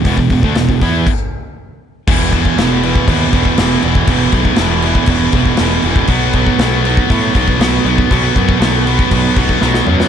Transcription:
<<
  \new Staff \with { instrumentName = "Distorted electric guitar" } { \clef bass \time 4/4 \key b \phrygian \tempo 4 = 119 <e, b,>16 <e, b,>16 <e, b,>16 <d a>16 <e, b,>16 <e, b,>16 <e b e'>8 r2 | <e, b, e>8 <e, b, e>8 <e, b, e>8 <e, b, e>8 <e, b, e>8 <e, b, e>8 <e, b, e>8 <e, b, e>8 | <e, b, e>8 <e, b, e>8 <e, b, e>8 <e, b, e>8 <e, b, e>8 <e, b, e>8 <e, b, e>8 <e, b, e>8 | <b, fis b>8 <b, fis b>8 <b, fis b>8 <b, fis b>8 <b, fis b>8 <b, fis b>8 <b, fis b>8 <b, fis b>8 |
<b, fis b>8 <b, fis b>8 <b, fis b>8 <b, fis b>8 <b, fis b>8 <b, fis b>8 <b, fis b>8 <b, fis b>8 | }
  \new Staff \with { instrumentName = "Distorted electric guitar" } { \clef bass \time 4/4 \key b \phrygian <e, b,>16 <e, b,>16 <e, b,>16 <d a>16 <e, b,>16 <e, b,>16 <e b e'>8 r2 | <e, b, e>8 <e, b, e>8 <e, b, e>8 <e, b, e>8 <e, b, e>8 <e, b, e>8 <e, b, e>8 <e, b, e>8 | <e, b, e>8 <e, b, e>8 <e, b, e>8 <e, b, e>8 <e, b, e>8 <e, b, e>8 <e, b, e>8 <e, b, e>8 | <b, fis b>8 <b, fis b>8 <b, fis b>8 <b, fis b>8 <b, fis b>8 <b, fis b>8 <b, fis b>8 <b, fis b>8 |
<b, fis b>8 <b, fis b>8 <b, fis b>8 <b, fis b>8 <b, fis b>8 <b, fis b>8 <b, fis b>8 <b, fis b>8 | }
  \new Staff \with { instrumentName = "Picked electric bass" } { \clef bass \time 4/4 \key b \phrygian e,,16 e,,16 e,,16 d,16 e,,16 e,,16 e,8 r2 | e,,4 e,,4 dis,8 e,,8 e,,8 e,,8 | e,,8 b,,8 e,,4 e,,8 e,,8 e,,8 e,,8 | b,,4 b,,4 a,8 b,,8 b,,8 b,,8 |
b,,8 fis,8 b,,4 b,,8 b,,8 b,,8 fis,8 | }
  \new DrumStaff \with { instrumentName = "Drums" } \drummode { \time 4/4 <hho bd>16 bd16 <hho bd>16 bd16 <hho sn>16 bd16 <hho bd>8 <cymc bd>4 r4 | <cymc bd>8 <cymc bd>16 bd16 <cymc sn>8 cymc16 bd16 <cymc bd>8 <cymc bd>16 bd16 <cymc sn>8 cymc16 bd16 | <cymc bd>8 <cymc bd>16 bd16 <cymc sn>8 cymc16 bd16 <cymc bd>8 <cymc bd>16 bd16 <cymc sn>8 cymc16 bd16 | <cymc bd>8 <cymc bd>16 bd16 <cymc sn>8 cymc16 bd16 <cymc bd>8 <cymc bd>16 bd16 <cymc sn>8 cymc16 bd16 |
<cymc bd>8 <cymc bd>16 bd16 <cymc sn>8 cymc16 bd16 <cymc bd>8 <cymc bd>16 bd16 sn16 sn16 toml16 sn16 | }
>>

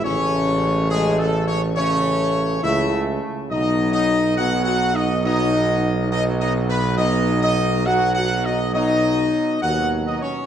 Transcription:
<<
  \new Staff \with { instrumentName = "Trumpet section" } { \time 4/4 \key b \mixolydian \tempo 4 = 69 cis''4 \tuplet 3/2 { gis'8 a'8 cis''8 } cis''4 e''8 r8 | dis''8 dis''8 \tuplet 3/2 { fis''8 fis''8 dis''8 } dis''4 \tuplet 3/2 { dis''8 dis''8 b'8 } | dis''8 dis''8 \tuplet 3/2 { fis''8 fis''8 dis''8 } dis''4 \tuplet 3/2 { fis''8 r16 dis''16 cis''8 } | }
  \new Staff \with { instrumentName = "French horn section" } { \time 4/4 \key b \mixolydian cis'4 \tuplet 3/2 { gis8 a8 cis'8 } cis'4 e'8 r8 | dis'8 dis'8 \tuplet 3/2 { fis'8 fis'8 dis'8 } dis'4 \tuplet 3/2 { dis'8 dis'8 b8 } | dis'8 dis'8 \tuplet 3/2 { fis'8 fis'8 dis'8 } dis'4 \tuplet 3/2 { fis'8 r16 dis'16 cis'8 } | }
  \new Staff \with { instrumentName = "Trombone section" } { \clef bass \time 4/4 \key b \mixolydian <cis a>2 <cis a>4 <cis a>4 | <b, fis>4 <b, fis>4 <b, fis>4 <b, fis>4 | <b, fis>4 <b, fis>4 <b, fis>4 <b, fis>4 | }
  \new Staff \with { instrumentName = "Tuba" } { \clef bass \time 4/4 \key b \mixolydian a,,2. cis,8 r8 | b,,1~ | b,,2. dis,8 r8 | }
>>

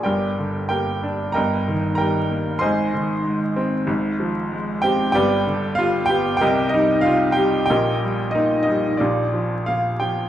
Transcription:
<<
  \new Staff \with { instrumentName = "Upright piano" } { \time 4/4 \key ees \major \tempo 4 = 94 << { g''4 g''4 bes''4 bes''4 | c'''4 r2 r8 g''8 | g''4 f''8 g''8 g''8 ees''8 f''8 g''8 | g''4 ees''8 ees''8 d''4 f''8 g''8 | } \\ { <g' bes' d''>4 <g' bes'>4 <bes' ees'' g''>4 <bes' g''>4 | <c'' ees'' aes''>4 r2 r8 g'8 | <g' b' d''>4 f'8 g'8 <g' bes' ees''>8 ees'8 f'8 g'8 | <g' bes' ees''>4 ees'8 ees'8 <d' f' g'>4. r8 | } >> }
  \new Staff \with { instrumentName = "Upright piano" } { \clef bass \time 4/4 \key ees \major <g,, g,>8 d8 bes8 d'8 <g,, g,>8 ees8 g8 bes8 | <aes,, aes,>8 ees8 aes8 c'8 <aes,, aes,>8 f8 aes8 c'8 | <g,, g,>8 d8 g8 b8 <c, c>8 g8 c8 g8 | <bes,, bes,>8 g8 bes8 g8 <bes,, bes,>8 f8 bes,8 f8 | }
>>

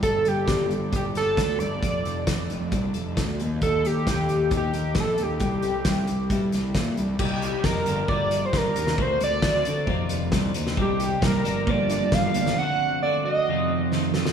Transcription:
<<
  \new Staff \with { instrumentName = "Analog synth lead" } { \time 4/4 \key g \minor \tempo 4 = 134 a'8 g'4 r8 g'8 a'4 d''8~ | d''4. r2 r8 | a'8 g'4. g'4 a'8 g'8~ | g'2. r4 |
g'4 bes'4 d''8. c''16 bes'4 | c''8 d''2 r4. | g'4 bes'4 d''4 f''4 | fis''4 d''8 ees''4. r4 | }
  \new Staff \with { instrumentName = "Clean electric guitar" } { \time 4/4 \key g \minor g,8 bes8 d'8 g8 d'8 g'8 d'8 g8 | f8 c'8 d'8 f8 d'8 a'8 d'8 ees8 | ees8 bes8 ees'8 f8 ees'8 bes'8 ees'8 f8 | c8 c'8 e'8 g8 e'8 g'8 e'8 g8 |
<c g bes ees' g'>4 <g bes ees' g'>8 <g, d f bes d' g'>8 <g, d f bes d' g'>4 <f bes d' g'>8 <f bes d' g'>8 | <d a c' fis'>4 <d a c' fis'>8 <a c' fis'>8 <f, c ees bes c' f'>4 <ees bes c' f'>8 <ees bes c' f'>8 | <c ees bes c' g'>4 <ees bes c' g'>8 <g, d f bes d' g'>8 <g, d f bes d' g'>4 <f bes d' g'>8 <f bes d' g'>8 | <d a c' fis'>4 <d a c' fis'>8 <a c' fis'>8 <f, c ees a c' f'>4 <ees a c' f'>8 <ees a c' f'>8 | }
  \new Staff \with { instrumentName = "Overdriven electric guitar" } { \time 4/4 \key g \minor r1 | r1 | r1 | r1 |
r1 | r1 | c4 bes8 g,8 bes8 d'8 f8 bes8 | d4 a8 fis'8 f,8 c'8 ees8 a8 | }
  \new Staff \with { instrumentName = "Picked electric bass" } { \clef bass \time 4/4 \key g \minor g,,8 g,,8 g,,8 g,,8 g,,8 g,,8 d,8 g,,8 | f,,8 f,,8 f,,8 f,,8 c,8 f,,8 d,8 ees,8 | ees,8 ees,8 ees,8 ees,8 ees,8 ees,8 bes,,8 ees,8 | c,8 c,8 c,8 c,8 g,8 c,8 bes,8 c,8 |
c,4 f,,8 g,,8 g,,4 g,,8 ees,8 | d,8 d,8 d,8 d8 f,,8 f,,8 c,8 ees,8 | c,4 c,8 g,,8 g,,4 g,,8 g,,8 | r1 | }
  \new DrumStaff \with { instrumentName = "Drums" } \drummode { \time 4/4 <hh bd>8 hh8 <hh bd sn>8 hh8 <hh bd>8 <hh sn>8 <hh bd sn>8 hh8 | <hh bd>8 hh8 <hh bd sn>8 hh8 <hh bd>8 hh8 <hh bd sn>8 hh8 | <hh bd>8 hh8 <hh bd sn>8 hh8 <hh bd>8 hh8 <hh bd sn>8 hh8 | <hh bd>8 hh8 <hh bd sn>8 hh8 <hh bd>8 <hh sn>8 <hh bd sn>8 hh8 |
<cymc bd>8 hh8 <bd sn>8 hh8 bd8 hh8 <bd sn>8 hh16 sn16 | bd8 hh8 <bd sn>8 hh8 bd8 hh8 <bd sn>8 hh16 sn16 | bd8 hh8 <bd sn>8 hh8 bd8 hh8 <bd sn>8 hh16 sn16 | r4 r4 r4 sn8 sn16 sn16 | }
>>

